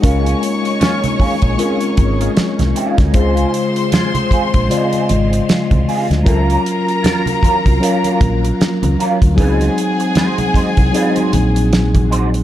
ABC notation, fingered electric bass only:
X:1
M:4/4
L:1/16
Q:"Swing 16ths" 1/4=77
K:Bbm
V:1 name="Fingered electric bass" clef=bass
D,,2 z4 z B,,, z2 A,,,2 z C,, z =D,, | D,,2 z4 z B,,, z2 A,,,2 z C,, z =D,, | D,,2 z4 z C,, z2 B,,,2 z D,, z =D,, | D,,2 z4 z C,, z2 B,,,6 |]